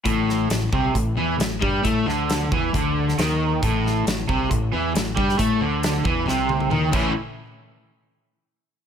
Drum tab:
CC |----------------|----------------|----------------|--------------x-|
HH |x---x---x---x---|x---x---x---x---|x---x---x---x---|x---x-----------|
SD |--o-o-------o---|--o-o------oo---|--o-o-------o--o|----o---o-------|
T1 |----------------|----------------|----------------|----------oo----|
T2 |----------------|----------------|----------------|------------o---|
BD |o-----o-o-----o-|o-----o-o-------|o-----o-o-----o-|o-----o-------o-|

CC |----------------|
HH |----------------|
SD |----------------|
T1 |----------------|
T2 |----------------|
BD |----------------|